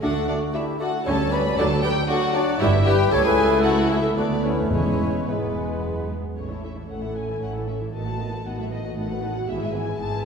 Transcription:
0.02 D2 A3 D4 F#4 A4 D5 F#5
0.28 A3 D4 F#4 D5
0.53 A3 E4 G4 D5 E5
0.79 A3 F#4 A4 D5 F#5
1.04 D2 G3 C#4 A4 C#5 A5
1.31 G3 B4 C#5 D5 B5
1.57 D2 F#3 D4 A4 D5 A5
1.82 F#3 G4 B4 D5 G5
2.07 F#3 D4 F#4 A4 D5 F#5
2.32 F#3 D4 F#4 D5
2.58 G1 G2 G3 E4 G4 E5
2.62 B4
2.84 G3 G4 B4 G5
3.10 C#2 A3 E4 A4 C#5 A5
3.23 G#4 B4 G#5
3.62 F#4 A4 F#5
3.90 E4 G#4 E5
4.16 D2 A3 B3 D4 F#4 B4 D5
4.42 C#4 E4 C#5
4.69 E1 E2 G#3 B3 C#4 E4 B4 C#5
5.26 G#2 G#3 B3 E4 B4
5.54 E2
5.82 F#2
6.09 G#2
6.35 A1 A2 A3 C#4 E4 C#5
6.50 E3 E4 A4 E5
6.63 A3 C#4 E4 C#5 E5
6.76 E3 E4 A4 E5
6.88 A1 A2 A3 C#4 E4 A4 C#5 F#5
7.02 E3 E4 A4 E5
7.15 A3 C#4 E4 C#5 G#5
7.29 E3 E4 A4 E5
7.40 A1 A2 A3 C#4 E4 C#5 F#5
7.54 E3 E4 A4 E5
7.67 A3 C#4 E4 C#5 E5
7.80 E3 E4 A4 E5
7.92 A1 A2 D#3 B3 F#4 A4 D#5 A5
8.05 F#3 A3 B4 F#5
8.18 D#3 B3 E4 A4 D#5
8.32 F#3 A3 B4 F#5
8.44 A1 A2 D#3 B3 F#4 A4 D#5 F#5
8.57 F#3 A3 B4 E5 F#5
8.70 D#3 B3 A4 D#5
8.84 F#3 A3 B4 F#5
8.95 A1 A2 D#3 B3 A4 D#5 F#5
9.10 F#3 A3 B4 F#5
9.22 D#3 B3 A4 D#5
9.34 F#3 A3 B4 F#5
9.48 G#1 G#2 E3 B3 G#4 E5
9.61 G#3 E4 B4 G#5
9.73 E3 B3 G#4 E5 G#5
9.87 G#3 E4 B4 G#5
9.98 G#1 G#2 E3 B3 G#4 E5 A5
10.12 G#3 E4 B4 G#5

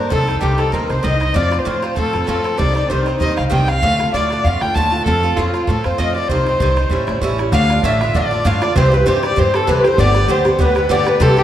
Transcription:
Already playing: A#3 D4 C5
0.00 D3
0.10 C2 G2 D#3 C4 D#4 A4, bodhran
0.27 D#3 C4 D#4 A4, bodhran
0.36 bodhran
0.41 C2 G2 D#3 C4 D#4 G4, bodhran
0.58 D#3 C4 D#4 A4, bodhran
0.72 D#2 G2 D#3 C4 D#4 A#4, bodhran
0.89 C2 D#3 C4 D#4 C5, bodhran
1.03 C2 G2 D#3 C4 D#4 D#5, bodhran
1.13 bodhran
1.20 D#3 C4 D#4, bodhran
1.34 F2 A2 F3 C4 F4 D5, bodhran
1.51 F3 C4 F4, bodhran
1.59 C5, bodhran
1.65 F2 A2 F3 C4 F4 C5, bodhran
1.82 F3 C4 F4, bodhran
1.96 A2 F3 C4 F4 A4, bodhran
2.13 F2 F3 C4 F4, bodhran
2.21 bodhran
2.27 F2 A2 F3 C4 F4 A4, bodhran
2.37 bodhran
2.44 F3 C4 F4, bodhran
2.58 C2 G2 D#3 C4 D#4 D5, bodhran
2.75 D#3 C4 D#4 D5, bodhran
2.89 C2 G2 D#3 C4 D#4 C5, bodhran
3.06 D#3 C4 D#4, bodhran
3.20 D#2 G2 D#3 C4 D#4 D#5, bodhran
3.37 C2 D#3 C4 D#4 F5, bodhran
3.50 C2 G2 D#3 C4 D#4 G5, bodhran
3.61 bodhran
3.67 D#3 C4 D#4 F5, bodhran
3.82 D2 A2 D3 A3 F4, bodhran
3.99 D3 A3 F4, bodhran
4.07 bodhran
4.13 D2 A2 D3 A3 F4 D5, bodhran
4.30 D3 A3 F4, bodhran
4.44 F2 A2 D3 A3 F4 F5, bodhran
4.61 D2 D3 A3 F4 G5, bodhran
4.74 D#2 A2 D3 A3 F4 A5, bodhran
4.84 bodhran
4.92 D3 A3 F4
5.05 F2 A2 F3 C4 F4 A4, bodhran
5.23 F3 C4 F4
5.30 bodhran
5.36 F2 A2 F3 C4 F4, bodhran
5.54 F3 C4 F4, bodhran
5.67 A2 F3 C4 F4 A4, bodhran
5.84 F2 F3 C4 F4 C5, bodhran
5.98 F2 A2 F3 C4 F4 D#5, bodhran
6.15 F3 C4 F4 D5
6.28 C2 G2 D#3 C4 D#4 C5, bodhran
6.46 D#3 C4 D#4, bodhran
6.54 bodhran
6.60 C2 G2 D#3 C4 D#4, bodhran
6.76 D#3 C4 D#4, bodhran
6.90 A1 A2 G3 C#4 E4, bodhran
7.07 A1 G3 C#4 E4, bodhran
7.21 A1 A2 G3 C#4 E4, bodhran
7.31 bodhran
7.38 G3 C#4 E4, bodhran
7.52 D2 A2 D3 D4 F4 F5, bodhran
7.70 D3 D4 F4, bodhran
7.83 A1 A2 D3 D4 F4 E5, bodhran
8.01 D3 D4 F4 E5, bodhran
8.14 A1 A2 D3 D4 F4 D5, bodhran
8.26 D5
8.31 D3 D4 F4
8.36 D5
8.45 G2 A2 D3 D4 F4 F5, bodhran
8.61 D3 D4 F4 D5, bodhran
8.76 C2 G2 E3 C4 G4 C5, bodhran
8.92 E3 C4 G4 B4
9.06 G2 E3 C4 G4 C5, bodhran
9.23 E3 C4 G4 D5, bodhran
9.36 G2 E3 C4 G4 C5, bodhran
9.54 E3 C4 G4 A4, bodhran
9.67 C2 G2 E3 C4 G4 B4, bodhran
9.84 E3 C4 G4 C5, bodhran
9.98 G1 A2 D3 B3 G4 D5, bodhran
10.14 D3 B3 G4, bodhran
10.28 D2 A2 D3 B3 G4 C5, bodhran
10.45 D3 B3 G4, bodhran
10.59 D2 A2 D3 B3 G4 B4, bodhran
10.75 D3 B3 G4, bodhran
10.89 G1 A2 D3 B3 G4 D5, bodhran
11.05 D3 B3 G4 B4, bodhran
11.20 C2 G2 E3 C4 G4 A4, bodhran
11.37 C4 G4, bodhran

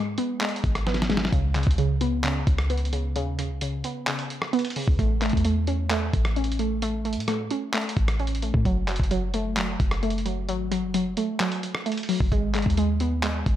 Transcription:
Already playing: G#2 G#3 B3
0.18 B3, closed hi-hat
0.41 G#3, clap, closed hi-hat
0.49 closed hi-hat
0.56 closed hi-hat
0.64 G#1, kick, closed hi-hat
0.75 cross-stick, closed hi-hat
0.87 B3, snare, closed hi-hat
0.94 snare, closed hi-hat
1.02 snare, closed hi-hat
1.10 G#3, snare, closed hi-hat
1.17 snare
1.25 snare
1.32 C#2 C#3, kick, closed hi-hat
1.55 C#3, clap, closed hi-hat
1.63 C#2, kick, closed hi-hat
1.71 closed hi-hat
1.78 C#3, closed hi-hat
2.01 B3, closed hi-hat
2.24 C#3, clap, closed hi-hat
2.47 C#2, kick, closed hi-hat
2.58 cross-stick, closed hi-hat
2.70 B3, closed hi-hat
2.78 closed hi-hat
2.85 closed hi-hat
2.93 C#3, closed hi-hat
3.16 D#2 C#3, closed hi-hat
3.39 C#3, closed hi-hat
3.50 C#2
3.61 C#3, closed hi-hat
3.84 B3, closed hi-hat
4.07 C#3, clap, closed hi-hat
4.19 closed hi-hat
4.30 closed hi-hat
4.42 cross-stick
4.53 B3, closed hi-hat
4.59 closed hi-hat
4.65 closed hi-hat
4.70 closed hi-hat
4.76 C#3, open hi-hat
4.88 C#2, kick
4.99 A1 A3, kick, closed hi-hat
5.22 A3, clap, closed hi-hat
5.29 E2, kick, closed hi-hat
5.37 closed hi-hat
5.45 A3, closed hi-hat
5.67 C#4, closed hi-hat
5.90 A3, clap, closed hi-hat
6.13 A1, kick, closed hi-hat
6.25 cross-stick, closed hi-hat
6.36 C#4, closed hi-hat
6.44 closed hi-hat
6.52 closed hi-hat
6.59 A3, closed hi-hat
6.82 A3, closed hi-hat
7.05 A3, closed hi-hat
7.13 A2, closed hi-hat
7.20 closed hi-hat
7.28 A3, cross-stick, closed hi-hat
7.51 C#4, closed hi-hat
7.74 A3, clap, closed hi-hat
7.81 closed hi-hat
7.89 closed hi-hat
7.97 A1, kick, closed hi-hat
8.08 cross-stick, closed hi-hat
8.20 C#4, closed hi-hat
8.27 closed hi-hat
8.35 closed hi-hat
8.42 A3, closed hi-hat
8.54 A2, kick
8.65 F#1 F#3, kick, closed hi-hat
8.88 F#3, clap, closed hi-hat
8.96 F#1, kick, closed hi-hat
9.03 closed hi-hat
9.11 F#3, closed hi-hat
9.34 A3, closed hi-hat
9.57 F#3, clap, closed hi-hat
9.80 F#1, kick, closed hi-hat
9.91 cross-stick, closed hi-hat
10.03 A3, closed hi-hat
10.10 closed hi-hat
10.18 closed hi-hat
10.26 F#3, closed hi-hat
10.49 G#1 F#3, closed hi-hat
10.72 F#3, closed hi-hat
10.83 F#1
10.94 F#3, closed hi-hat
11.17 A3, closed hi-hat
11.40 F#3, clap, closed hi-hat
11.52 closed hi-hat
11.63 closed hi-hat
11.75 cross-stick
11.86 A3, closed hi-hat
11.92 closed hi-hat
11.97 closed hi-hat
12.03 closed hi-hat
12.09 F#3, open hi-hat
12.20 F#1, kick
12.32 G#1 G#3, kick, closed hi-hat
12.55 G#3, clap, closed hi-hat
12.62 D#2, kick, closed hi-hat
12.70 closed hi-hat
12.77 G#3, closed hi-hat
13.00 B3, closed hi-hat
13.23 G#3, clap, closed hi-hat
13.46 G#1, kick, closed hi-hat

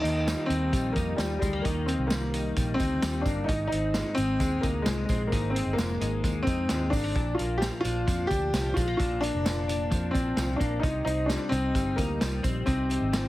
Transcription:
Already playing: D#3 D#4
0.01 D#2 A#3 D#4, closed hi-hat
0.27 G3, snare, closed hi-hat, tambourine
0.46 D#2 C4 D#4, closed hi-hat
0.50 tambourine
0.72 A#1 G3, kick, closed hi-hat, tambourine
0.93 F2 A#3 D#4, kick, closed hi-hat
0.98 tambourine
1.16 D#2 G3, snare, closed hi-hat, tambourine
1.39 D2 G3 G#3, kick, closed hi-hat, tambourine
1.53 A#3
1.62 D#2 D#3 A#3 D#4, kick, closed hi-hat, tambourine
1.86 A#3 C4, closed hi-hat, tambourine
1.98 C2
2.07 G3 A#3, snare, closed hi-hat, tambourine
2.34 D#4, closed hi-hat, tambourine
2.56 A#1 G3, kick, closed hi-hat, tambourine
2.74 C4
2.79 D2 D#4, kick, closed hi-hat, tambourine
3.02 D#2 G3, snare, closed hi-hat, tambourine
3.21 A#3 D4
3.26 G1, kick, closed hi-hat, tambourine
3.44 G#2 D#4
3.48 G#1 D#4, kick, closed hi-hat
3.67 C4 D#4
3.72 G#1, closed hi-hat, tambourine
3.94 G#3, snare, closed hi-hat, tambourine
4.15 G#1 C4 D#4, closed hi-hat, tambourine
4.40 D#2 G#3, kick, closed hi-hat, tambourine
4.61 D2 A#3 D#4, kick, closed hi-hat, tambourine
4.82 C2 G#3, snare, closed hi-hat, tambourine
4.86 G#3
5.05 G#3, tambourine
5.09 A#1 C4, kick, closed hi-hat
5.27 A#3
5.32 G#1 G#2 D#4, kick, closed hi-hat, tambourine
5.50 C4
5.55 C4, closed hi-hat
5.66 G1
5.73 A#3
5.78 G#3, snare, closed hi-hat, tambourine
6.01 G#1 D#4, closed hi-hat, tambourine
6.24 D#2 G#3, kick, closed hi-hat, tambourine
6.43 C4
6.47 F2 D#4, kick, closed hi-hat, tambourine
6.69 D#2 G#3, snare, closed hi-hat, tambourine
6.90 G#1 A#3 D4, kick, open hi-hat, tambourine
7.04 C4
7.15 A#1 A#2 D4, kick, closed hi-hat
7.35 A#3 F4
7.39 A#1, closed hi-hat, tambourine
7.58 F3 G4
7.62 snare, closed hi-hat, tambourine
7.81 A#1 D4 F4
7.85 closed hi-hat, tambourine
8.07 F2 F3, kick, closed hi-hat, tambourine
8.27 D2 D4 G4, kick, closed hi-hat, tambourine
8.53 C2 F3, snare, closed hi-hat, tambourine
8.74 A#1 G#3 F4, kick, closed hi-hat, tambourine
8.88 A#3
8.97 A#1 A#2 D4 F4, kick, closed hi-hat
9.21 A#3 D4, closed hi-hat, tambourine
9.34 F1
9.45 F3, snare, closed hi-hat, tambourine
9.68 D4, closed hi-hat, tambourine
9.90 F2 F3, kick, closed hi-hat, tambourine
10.11 A#1 C4 D4, kick, closed hi-hat
10.15 tambourine
10.37 C2 F3, snare, closed hi-hat, tambourine
10.56 A#1 A#3 D4
10.61 kick, closed hi-hat, tambourine
10.80 C2 C3 D#4, kick, closed hi-hat, tambourine
11.05 C2 C4 D#4, closed hi-hat
11.26 G3 D4, snare, closed hi-hat
11.30 tambourine
11.49 C2 C4 D#4, closed hi-hat, tambourine
11.74 G1 G3, kick, closed hi-hat, tambourine
11.96 D2 A#3 D#4, kick, closed hi-hat, tambourine
12.21 C2 G3, snare, closed hi-hat, tambourine
12.43 A#1 C4, kick, closed hi-hat, tambourine
12.66 C2 C3 C4 D#4, kick, closed hi-hat, tambourine
12.89 C4, closed hi-hat, tambourine
13.01 G#1
13.12 G3, snare, closed hi-hat, tambourine

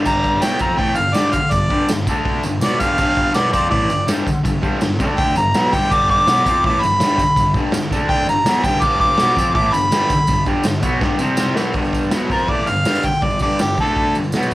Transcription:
0.05 G2 D3 G3 A#5, kick, crash, tambourine
0.24 kick, tambourine
0.41 B2 F#3 B3 G5, snare, open hi-hat, tambourine
0.59 F3 C4 F4 A#5, kick, tambourine
0.77 A2 E3 A3 G5, kick, open hi-hat
0.95 G2 D3 F5, tambourine
1.14 G2 D3 G3 D5, snare, tambourine
1.33 F5, kick, tambourine
1.51 G2 D3 D5, kick, open hi-hat, tambourine
1.70 G2 D3 G3, kick, tambourine
1.89 G2 D3, snare, open hi-hat, tambourine
2.07 D3 A3 D4, kick, tambourine
2.25 kick, open hi-hat
2.43 G2 D3, tambourine
2.61 B2 F#3 B3 D5, snare, open hi-hat, tambourine
2.79 G2 D3 G3 F5, kick, tambourine
2.97 G2 D3 G3, kick, tambourine, crash
3.16 kick, tambourine
3.33 B2 F#3 B3 D5, snare, open hi-hat, tambourine
3.52 F3 C4 F4 D5, kick, tambourine
3.69 A2 E3 A3 D5, kick, open hi-hat
3.89 G2 D3, tambourine
4.07 G2 D3 G3, snare, open hi-hat, tambourine
4.27 kick, tambourine
4.44 G2 D3, kick, open hi-hat, tambourine
4.61 G2 D3 G3, kick, tambourine
4.81 G2 D3, snare, open hi-hat, tambourine
4.99 D3 A3 D4, kick, tambourine
5.18 G5, kick, open hi-hat, tambourine
5.36 G2 D3 A#5, tambourine
5.54 B2 F#3 B3, snare, open hi-hat, tambourine
5.73 G2 D3 G3 G5, kick, tambourine
5.91 G2 D3 G3 D6, kick, crash, tambourine
6.09 D6, kick, tambourine
6.27 B2 F#3 B3, snare, open hi-hat, tambourine
6.46 F3 C4 F4, kick, tambourine
6.64 A2 E3 A3 D6, kick, open hi-hat
6.82 G2 D3 B5, tambourine
7.00 G2 D3 G3, snare, open hi-hat, tambourine
7.18 kick, tambourine
7.36 G2 D3, kick, open hi-hat, tambourine
7.54 G2 D3 G3, kick, tambourine
7.72 G2 D3, snare, open hi-hat, tambourine
7.91 D3 A3 D4, kick, tambourine
8.09 G5, kick, open hi-hat
8.28 G2 D3 A#5, tambourine
8.46 B2 F#3 B3, snare, open hi-hat, tambourine
8.64 G2 D3 G3 G5, kick, tambourine
8.82 G2 D3 G3 D6, kick, tambourine, crash
9.00 D6, kick, tambourine
9.18 B2 F#3 B3, snare, open hi-hat, tambourine
9.36 F3 C4 F4, kick, tambourine
9.54 A2 E3 A3 D6, kick, open hi-hat
9.73 G2 D3 B5, tambourine
9.91 G2 D3 G3, snare, open hi-hat, tambourine
10.10 kick, tambourine
10.27 G2 D3, kick, open hi-hat, tambourine
10.46 G2 D3 G3, kick, tambourine
10.63 G2 D3, snare, open hi-hat, tambourine
10.82 B2 F#3 B3, kick, tambourine
11.00 G2 D3 G3, kick, snare, tambourine
11.19 C3 G3 C4, tambourine
11.37 snare, tambourine
11.55 B2 F#3 B3, snare, tambourine
11.73 G2 D3 G3, kick, open hi-hat, tambourine
11.85 tambourine
11.93 kick, tambourine
12.03 tambourine
12.11 B2 F#3 B3, snare, open hi-hat, tambourine
12.30 F3 C4 F4 A#4, kick, tambourine
12.39 tambourine
12.48 A2 E3 A3 D5, kick, open hi-hat
12.67 G2 D3 F5, tambourine
12.85 G2 D3 G3, snare, open hi-hat, tambourine
12.95 tambourine
13.03 G5, kick, tambourine
13.12 tambourine
13.21 G2 D3 D5, kick, open hi-hat, tambourine
13.30 tambourine
13.39 G2 D3 G3 D5, kick, tambourine
13.50 tambourine
13.59 G2 D3 G4, snare, open hi-hat, tambourine
13.78 D3 A3 D4 A4, kick, tambourine
13.87 tambourine
13.96 kick, open hi-hat
14.15 G2 D3, tambourine
14.24 tambourine
14.32 B2, snare, open hi-hat, tambourine
14.36 F#3 B3
14.43 tambourine

